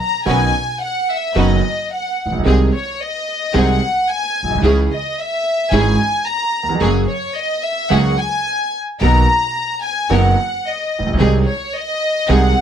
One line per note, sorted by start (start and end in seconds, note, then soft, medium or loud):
0.00 0.25 A#5 medium
0.26 0.49 B1 medium
0.26 0.50 B1 medium
0.26 0.49 B2 medium
0.26 0.49 D#3 medium
0.26 0.49 B3 medium
0.26 0.50 C#4 medium
0.26 0.50 D#4 medium
0.26 0.49 F#4 medium
0.26 0.50 B4 medium
0.26 0.78 G#5 medium
0.83 1.10 F#5 medium
1.10 1.37 E5 medium
1.35 1.59 F#1 medium
1.35 1.60 F#1 medium
1.35 1.59 F#2 medium
1.35 1.59 D#3 medium
1.35 1.59 B3 medium
1.35 1.59 C#4 medium
1.35 1.59 D#4 medium
1.35 1.59 F#4 medium
1.35 1.59 B4 medium
1.35 1.92 D#5 medium
1.93 2.30 F#5 medium
2.26 2.31 A1 soft
2.26 2.33 A1 soft
2.31 2.38 A#1 medium
2.31 2.39 A#1 medium
2.38 2.45 B1 medium
2.38 2.46 B1 medium
2.45 2.69 C2 medium
2.45 2.69 C3 medium
2.45 2.68 D#3 medium
2.45 2.69 G#3 medium
2.45 2.68 C4 medium
2.45 2.69 C4 medium
2.45 2.69 D#4 medium
2.45 2.69 G#4 medium
2.74 2.99 C#5 medium
3.01 3.55 D#5 medium
3.54 3.77 C2 medium
3.54 3.77 C3 medium
3.54 3.77 D#3 medium
3.54 3.77 G#3 medium
3.54 3.77 C4 medium
3.54 3.78 C4 medium
3.54 3.77 D#4 medium
3.54 3.77 G#4 medium
3.54 3.78 G#4 medium
3.54 4.10 F#5 medium
4.10 4.51 G#5 medium
4.43 4.48 A#1 soft
4.43 4.50 A#1 soft
4.49 4.55 B1 medium
4.49 4.57 B1 medium
4.55 4.62 C2 medium
4.55 4.64 C2 medium
4.62 4.86 C#2 medium
4.62 4.87 C#2 medium
4.62 4.87 C#3 medium
4.62 4.87 E3 medium
4.62 4.87 G#3 medium
4.62 4.86 C#4 medium
4.62 4.87 C#4 medium
4.62 4.86 E4 medium
4.62 4.86 G#4 medium
4.62 4.87 G#4 medium
4.92 5.17 D#5 medium
5.20 5.73 E5 medium
5.72 5.95 G#1 medium
5.72 5.96 G#1 medium
5.72 5.96 G#2 medium
5.72 5.96 E3 medium
5.72 5.96 G#3 medium
5.72 5.95 C#4 medium
5.72 5.96 C#4 medium
5.72 5.95 E4 medium
5.72 5.96 G#4 medium
5.72 6.27 G#5 medium
6.26 6.68 A#5 medium
6.63 6.69 D#2 soft
6.69 6.76 E2 medium
6.75 6.82 F2 medium
6.81 7.04 F#1 medium
6.81 7.04 F#2 medium
6.81 7.04 F#3 medium
6.81 7.04 A#3 medium
6.81 7.05 A#3 medium
6.81 7.04 C#4 medium
6.81 7.05 F#4 medium
6.81 7.05 G#4 medium
7.09 7.35 C#5 medium
7.36 7.63 D#5 medium
7.63 7.91 E5 medium
7.90 8.14 C#2 medium
7.90 8.15 C#2 medium
7.90 8.14 C#3 medium
7.90 8.14 F#3 medium
7.90 8.14 A#3 medium
7.90 8.14 C#4 medium
7.90 8.15 F#4 medium
7.90 8.14 G#4 medium
7.90 8.15 G#4 medium
7.90 8.19 F#5 medium
8.19 8.74 G#5 medium
9.01 9.24 B1 medium
9.01 9.25 B1 medium
9.01 9.25 B2 medium
9.01 9.25 D#3 medium
9.01 9.25 A#3 medium
9.01 9.24 B3 medium
9.01 9.25 B3 medium
9.01 9.24 D#4 medium
9.01 9.25 F#4 medium
9.01 9.24 A#4 medium
9.01 9.80 A#5 medium
9.85 10.12 G#5 medium
10.10 10.33 F#1 medium
10.10 10.34 F#1 medium
10.10 10.33 F#2 medium
10.10 10.33 D#3 medium
10.10 10.34 A#3 medium
10.10 10.33 B3 medium
10.10 10.34 B3 medium
10.10 10.34 D#4 medium
10.10 10.34 F#4 medium
10.10 10.34 A#4 medium
10.14 10.67 F#5 medium
10.68 11.08 D#5 medium
10.99 11.06 A1 soft
11.06 11.13 A#1 medium
11.06 11.12 A#1 medium
11.13 11.20 B1 medium
11.19 11.43 C2 medium
11.19 11.43 C3 medium
11.19 11.43 D#3 medium
11.19 11.43 G#3 medium
11.19 11.42 C4 medium
11.19 11.43 C4 medium
11.19 11.42 D#4 medium
11.19 11.42 G#4 medium
11.19 11.43 G#4 medium
11.48 11.73 C#5 medium
11.76 12.30 D#5 medium
12.29 12.52 C2 medium
12.29 12.52 C3 medium
12.29 12.52 D#3 medium
12.29 12.52 G#3 medium
12.29 12.52 C4 medium
12.29 12.52 D#4 medium
12.29 12.52 G#4 medium
12.29 12.53 G#4 medium
12.29 12.61 F#5 loud